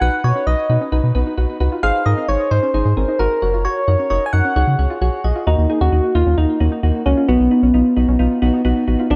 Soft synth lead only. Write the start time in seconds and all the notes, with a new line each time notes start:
0.02 F#5
0.24 C#5
0.47 D#5
1.83 F5
2.06 D#5
2.29 C#5
2.51 C5
3.19 A#4
3.65 C#5
4.10 C#5
4.26 G#5
4.33 F#5
5.47 D#4
5.81 F#4
6.15 F4
6.38 D#4
7.06 C#4
7.28 B3
9.11 D4